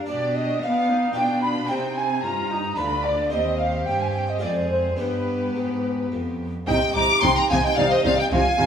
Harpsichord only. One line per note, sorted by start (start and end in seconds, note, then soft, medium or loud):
0.06 0.58 B2 soft
0.06 1.11 D4 soft
0.06 1.12 D5 soft
0.63 1.12 B3 soft
1.13 1.66 B2 soft
1.13 1.67 F4 soft
1.13 1.68 D5 soft
1.67 2.20 C3 soft
1.67 2.73 D#4 soft
1.67 2.74 C5 soft
2.24 2.74 G2 soft
2.75 3.29 D2 soft
2.75 3.29 D4 soft
2.75 3.30 B4 soft
3.30 3.83 D#2 soft
3.30 4.38 G4 soft
3.30 4.39 C5 soft
3.87 4.39 G2 soft
4.38 4.95 G#3 soft
4.38 4.96 F4 soft
4.38 4.97 C5 soft
4.42 4.95 F2 soft
4.96 5.52 G2 soft
4.96 6.62 D4 soft
4.96 6.63 G4 soft
5.56 6.08 G#2 soft
6.12 6.64 F2 soft
6.67 6.92 C3 medium
6.81 6.96 G4 medium
6.95 7.20 C3 medium
6.95 7.10 D#4 medium
7.10 7.24 G4 medium
7.23 7.47 C3 medium
7.23 7.37 D#4 medium
7.50 7.74 C3 medium
7.50 7.64 G4 medium
7.63 7.78 D#4 medium
7.77 8.02 C3 medium
7.90 8.05 G4 medium
8.05 8.29 C3 medium
8.05 8.19 G#4 soft
8.18 8.32 G4 medium
8.32 8.56 C3 medium
8.45 8.59 F4 medium
8.59 8.66 C3 medium
8.59 8.66 C4 medium